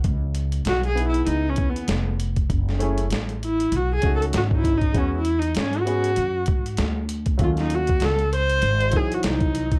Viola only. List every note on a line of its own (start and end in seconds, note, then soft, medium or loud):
0.68 0.86 F#4 loud
0.87 1.06 G#4 medium
1.09 1.27 E4 medium
1.28 1.50 D#4 medium
1.49 1.70 C#4 medium
1.69 1.99 B3 medium
3.44 3.77 E4 medium
3.76 3.94 F#4 medium
3.95 4.13 G#4 loud
4.16 4.24 A4 loud
4.36 4.44 F#4 medium
4.54 4.58 D#4 medium
4.54 4.79 E4 medium
4.77 4.99 D#4 medium
4.97 5.16 C#4 medium
5.18 5.40 E4 medium
5.38 5.57 D#4 medium
5.59 5.82 C#4 medium
5.80 6.70 F#4 loud
7.43 7.50 F4 medium
7.61 7.76 D#4 medium
7.74 8.06 F#4 medium
8.04 8.33 A4 loud
8.36 8.98 C5 loud
8.96 9.15 G#4 loud
9.14 9.25 F#4 medium
9.27 9.79 D#4 medium